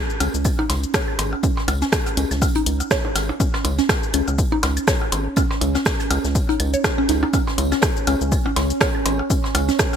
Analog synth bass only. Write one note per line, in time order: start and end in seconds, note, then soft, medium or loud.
0.20 0.29 C#2 loud
0.34 0.48 C#2 medium
0.70 0.86 C#2 medium
1.19 1.35 G#1 medium
1.68 1.84 C#2 loud
2.17 2.25 C#2 loud
2.31 2.44 C#2 medium
2.66 2.82 C#2 medium
3.15 3.31 G#1 medium
3.65 3.81 C#2 loud
4.14 4.22 C#2 loud
4.28 4.41 C#2 medium
4.63 4.79 C#2 medium
5.12 5.28 G#1 medium
5.61 5.77 C#2 loud
6.11 6.19 C#2 loud
6.24 6.38 C#2 medium
6.60 6.76 C#2 medium
7.09 7.25 C#2 medium
7.58 7.74 C#2 loud
8.07 8.16 C#2 loud
8.21 8.35 C#2 medium
8.56 8.72 C#2 medium
9.06 9.22 G#1 medium
9.55 9.71 C#2 loud